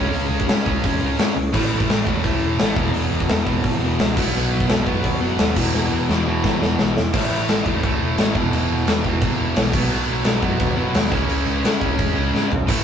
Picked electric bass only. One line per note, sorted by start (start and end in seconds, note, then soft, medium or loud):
0.14 0.27 C#2 loud
0.31 0.44 C#2 loud
0.48 0.61 C#3 medium
0.66 0.79 C#2 medium
0.84 0.97 E2 medium
1.02 1.14 C#2 loud
1.18 1.31 G#2 medium
1.36 1.49 C#2 medium
1.54 1.67 A1 loud
1.72 1.85 A1 loud
1.90 2.02 A1 medium
2.07 2.20 E2 medium
2.24 2.37 C#2 medium
2.43 2.55 E1 medium
2.60 2.72 A1 loud
2.77 2.89 E1 medium
2.95 3.07 E1 medium
3.13 3.25 E1 loud
3.30 3.43 E2 loud
3.47 3.60 E1 medium
3.64 3.77 G#1 medium
3.83 3.95 E1 medium
4.00 4.13 C#2 loud
4.17 4.30 B1 loud
4.35 4.48 B1 loud
4.52 4.65 B1 loud
4.70 4.82 B1 loud
4.87 5.00 F#2 medium
5.04 5.17 D#2 medium
5.22 5.35 F#1 loud
5.40 5.52 D#2 medium
5.56 5.69 E1 medium
5.74 5.87 E1 loud
5.92 6.05 E1 loud
6.09 6.22 E2 loud
6.27 6.40 E1 medium
6.44 6.57 G#1 medium
6.62 6.75 E1 medium
6.80 6.92 B1 medium
6.97 7.09 E1 medium
7.14 7.27 A1 loud
7.31 7.44 A1 loud
7.49 7.61 A1 loud
7.66 7.79 E2 medium
7.84 7.96 C#2 medium
8.00 8.13 E1 loud
8.17 8.30 A1 loud
8.35 8.48 E1 loud
8.52 8.65 E1 medium
8.70 8.83 E1 loud
8.87 9.00 E2 loud
9.05 9.17 E1 medium
9.22 9.35 G#1 medium
9.39 9.52 E1 loud
9.56 9.69 B1 loud
9.74 9.86 B1 loud
9.91 10.04 B1 loud
10.08 10.21 B1 loud
10.25 10.38 B1 loud
10.43 10.56 F#2 medium
10.60 10.73 D#2 medium
10.78 10.90 F#1 medium
10.95 11.08 D#2 loud
11.12 11.25 C#2 medium
11.29 11.42 C#2 loud
11.47 11.60 C#2 loud
11.65 11.77 C#3 loud
11.82 11.94 C#2 medium
11.99 12.12 E2 medium
12.16 12.29 C#2 medium
12.34 12.47 G#2 medium
12.51 12.64 B1 medium
12.69 12.82 A1 loud